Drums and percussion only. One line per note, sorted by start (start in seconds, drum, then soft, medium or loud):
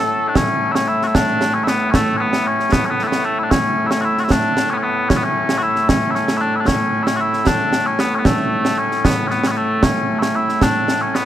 0.35 concert bass drum medium
0.35 snare loud
0.75 snare medium
1.02 snare soft
1.15 concert bass drum medium
1.15 snare loud
1.41 snare medium
1.67 snare medium
1.94 concert bass drum medium
1.94 snare medium
2.33 snare medium
2.60 snare soft
2.73 concert bass drum medium
2.73 snare medium
2.99 snare soft
3.12 snare medium
3.51 concert bass drum medium
3.51 snare loud
3.91 snare medium
4.18 snare soft
4.30 concert bass drum medium
4.30 snare loud
4.57 snare medium
5.10 concert bass drum medium
5.10 snare loud
5.49 snare medium
5.76 snare soft
5.89 concert bass drum medium
5.89 snare loud
6.15 snare soft
6.28 snare medium
6.68 concert bass drum medium
6.68 snare loud
7.07 snare medium
7.33 snare soft
7.47 concert bass drum medium
7.47 snare loud
7.73 snare medium
7.99 snare medium
8.25 concert bass drum medium
8.25 snare loud
8.65 snare medium
8.92 snare soft
9.05 concert bass drum medium
9.05 snare loud
9.31 snare soft
9.44 snare medium
9.83 concert bass drum medium
9.83 snare loud
10.22 snare medium
10.49 snare soft
10.61 concert bass drum medium
10.61 snare loud
10.88 snare medium
11.15 snare medium